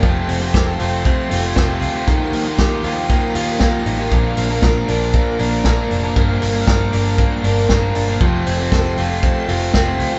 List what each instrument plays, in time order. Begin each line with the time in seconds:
Already playing: string machine F5 G5
0.02 picked electric bass F1, overdriven electric guitar F3 A3 C4 F4 G4, string machine A4 C6, kick, closed hi-hat
0.28 picked electric bass F1, clean electric guitar C4, open hi-hat
0.40 overdriven electric guitar C4 F4 G4
0.54 picked electric bass F1, clean electric guitar G4, kick, snare, closed hi-hat
0.67 clean electric guitar A4
0.79 picked electric bass F1, overdriven electric guitar A3 C4 F4 G4, open hi-hat
1.05 clean electric guitar C4, kick, closed hi-hat
1.30 picked electric bass F1, overdriven electric guitar A3 C4 F4 G4, open hi-hat
1.56 picked electric bass F1, overdriven electric guitar A3 C4 F4 G4, kick, snare
1.81 picked electric bass D2, clean electric guitar F4, open hi-hat
1.94 overdriven electric guitar C4 F4 G4
2.07 picked electric bass D#2, overdriven electric guitar D#3 F3 A#3 F4 G4, string machine A#4 D#6, kick, closed hi-hat
2.33 picked electric bass D#2, clean electric guitar A#3, open hi-hat
2.45 overdriven electric guitar A#3 F4 G4
2.58 picked electric bass D#2, clean electric guitar G4, kick, snare, closed hi-hat
2.83 picked electric bass D#2, overdriven electric guitar F3 A#3 F4 G4, open hi-hat
3.09 clean electric guitar A#3, kick, closed hi-hat
3.34 picked electric bass D#2, overdriven electric guitar F3 A#3 F4 G4, open hi-hat
3.60 picked electric bass D#2, overdriven electric guitar F3 A#3 F4 G4, kick, snare, closed hi-hat
3.86 picked electric bass A1, clean electric guitar D#4, open hi-hat
3.98 overdriven electric guitar A#3 F4 G4
4.11 picked electric bass A#1, overdriven electric guitar A#2 D3 F3 A#3 D4 A#4, string machine A#4 D5 D6, kick, closed hi-hat
4.37 picked electric bass A#1, clean electric guitar A#3, open hi-hat
4.49 overdriven electric guitar F3 A#3 D4 A#4
4.62 picked electric bass A#1, clean electric guitar A#4, kick, snare, closed hi-hat
4.88 picked electric bass A#1, overdriven electric guitar F3 A#3 D4 A#4, open hi-hat
5.13 clean electric guitar A#3, kick, closed hi-hat
5.39 picked electric bass A#1, overdriven electric guitar F3 A#3 D4 A#4, open hi-hat
5.64 picked electric bass A#1, overdriven electric guitar F3 A#3 D4 A#4, kick, snare, closed hi-hat
5.91 picked electric bass F1, clean electric guitar D4, open hi-hat
6.03 overdriven electric guitar F3 A#3 D4 A#4
6.15 picked electric bass G1, overdriven electric guitar G2 D3 F3 A#3 D4 A#4, string machine G5, kick, closed hi-hat
6.42 picked electric bass G1, clean electric guitar A#3, open hi-hat
6.54 overdriven electric guitar F3 A#3 D4 A#4
6.67 picked electric bass G1, clean electric guitar A#4, kick, snare, closed hi-hat
6.92 picked electric bass G1, overdriven electric guitar F3 A#3 D4 A#4, open hi-hat
7.18 clean electric guitar A#3, kick, closed hi-hat
7.44 picked electric bass G1, overdriven electric guitar F3 A#3 D4 A#4, open hi-hat
7.69 picked electric bass G1, overdriven electric guitar F3 A#3 D4 A#4, kick, snare, closed hi-hat
7.95 picked electric bass G1, clean electric guitar D4, open hi-hat
8.08 overdriven electric guitar F3 A#3 D4 A#4
8.20 picked electric bass F1, overdriven electric guitar F3 A3 C4 F4 G4, string machine A4 F5 C6, kick, closed hi-hat
8.46 picked electric bass F1, clean electric guitar C4, open hi-hat
8.59 overdriven electric guitar C4 F4 G4
8.72 picked electric bass F1, clean electric guitar A4, kick, snare, closed hi-hat
8.97 picked electric bass F1, overdriven electric guitar A3 C4 F4 G4, open hi-hat
9.23 clean electric guitar C4, kick, closed hi-hat
9.48 picked electric bass F1, overdriven electric guitar A3 C4 F4 G4, open hi-hat
9.74 picked electric bass F1, overdriven electric guitar A3 C4 F4 G4, kick, snare, closed hi-hat
9.99 picked electric bass D2, clean electric guitar F4, open hi-hat
10.12 overdriven electric guitar C4 F4 G4